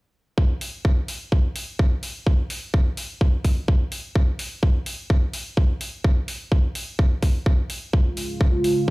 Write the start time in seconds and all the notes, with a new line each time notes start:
0.38 kick
0.61 open hi-hat
0.85 kick
1.08 open hi-hat
1.32 kick
1.56 open hi-hat
1.79 kick
2.03 open hi-hat
2.27 kick
2.50 open hi-hat
2.74 kick
2.97 open hi-hat
3.21 kick
3.45 kick, open hi-hat
3.68 kick
3.92 open hi-hat
4.15 kick
4.39 open hi-hat
4.63 kick
4.86 open hi-hat
5.10 kick
5.34 open hi-hat
5.57 kick
5.81 open hi-hat
6.04 kick
6.28 open hi-hat
6.52 kick
6.75 open hi-hat
6.99 kick
7.23 kick, open hi-hat
7.46 kick
7.70 open hi-hat
7.93 C#3 G#3 F4, kick
8.17 open hi-hat
8.41 kick
8.64 open hi-hat